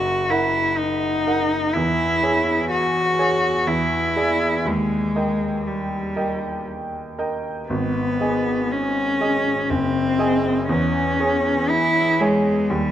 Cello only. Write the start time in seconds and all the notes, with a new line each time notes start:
Already playing: F#4
0.30 E4
0.78 D#4
1.73 E4
2.71 F#4
3.67 E4
4.66 G#3
5.67 G3
7.69 B3
8.71 C#4
9.70 C4
10.68 C#4
11.70 E4
12.20 G#3
12.70 G3